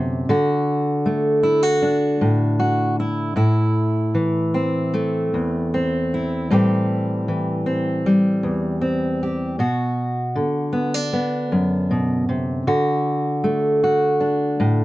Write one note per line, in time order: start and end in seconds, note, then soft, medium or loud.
0.00 0.24 F#2 medium
0.00 0.28 C3 medium
0.00 0.28 D3 medium
0.00 0.24 B3 medium
0.00 0.29 D4 soft
0.00 0.28 F#4 medium
0.29 3.37 D3 medium
0.29 1.43 F#4 medium
1.06 4.56 A3 medium
1.43 1.63 E4 medium
1.63 2.58 F#4 medium
1.82 3.32 D4 medium
2.21 3.35 A2 medium
2.59 2.98 F#4 medium
3.00 3.35 E4 medium
3.36 5.32 A2 medium
3.36 6.11 E4 medium
4.15 6.46 E3 medium
4.54 5.72 C4 medium
4.94 6.46 A3 medium
5.34 6.52 E2 medium
5.74 6.47 C4 medium
6.14 6.53 E4 soft
6.51 8.44 A2 medium
6.51 7.27 E3 medium
6.51 8.05 G3 medium
6.51 7.65 C4 soft
6.51 9.22 G4 medium
7.28 9.55 E3 medium
7.66 8.80 C4 soft
8.06 9.60 G3 soft
8.43 9.59 E2 medium
8.81 9.54 C4 soft
9.23 9.56 G4 medium
9.59 10.36 B2 medium
9.59 12.62 F#4 medium
10.35 12.66 D3 medium
10.73 10.94 B3 medium
10.94 12.67 D4 soft
11.13 12.62 B3 medium
11.52 12.62 F#2 medium
11.91 12.28 B2 medium
12.29 12.67 C3 medium
12.67 14.85 D3 medium
12.67 13.82 F#4 medium
13.44 14.85 A3 soft
13.84 14.85 F#4 medium
14.20 14.85 D4 soft
14.60 14.85 A2 medium